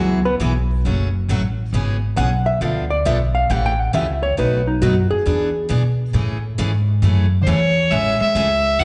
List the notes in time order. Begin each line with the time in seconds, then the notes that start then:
Already playing: C#2 E3 F#3 B3 E4 F#4 G#4 B4
0.25 B3 B4
0.40 B1 E3 B3 E4 G#4 B4
0.85 F#1 C#3 F#3 A3 C#4 F#4
1.29 A1 C#3 F#3 A3 C#4 F#4
1.73 G#1 C#3 E3 B3 C#4 G#4
2.16 B1 C#3 E3 B3 C#4 G#4 F#5
2.46 E5
2.61 D2 D3 F3 B3 D4 A4 F5
2.90 D5
3.05 B1 D3 F3 B3 D4 A4 E5
3.35 F5
3.50 A1 C#3 E3 A3 C#4 G4 F#5
3.66 G5
3.81 F#5
3.93 C#2 C#3 E3 A3 C#4 G4 E5
4.23 C#5
4.37 B1 B2 F#3 A3 D#4 F#4 B4
4.67 D#4
4.82 F#2 B2 F#3 A3 D#4 F#4
5.11 G#4, muted upright bass stroke
5.26 E2 E3 B3 D4 G#4
5.69 B2 E3 B3 D4 G#4
6.13 A2 C#3 E3 A3 C#4 G#4
6.58 G#2 C#3 E3 A3 C#4 G#4
7.02 F#2 C#3 E3 A3 C#4 G#4
7.42 D3 C5
7.46 E2 C#3 E3 A3 C#4 G#4 C#5
7.91 A1 C#3 E3 G#3 A3 C#4 G#4 E5
8.20 G#3 E5, muted upright bass stroke
8.35 C#2 C#3 E3 A3 C#4 G#4
8.79 E2 E3 F#3 B3 E4 F#4 F#5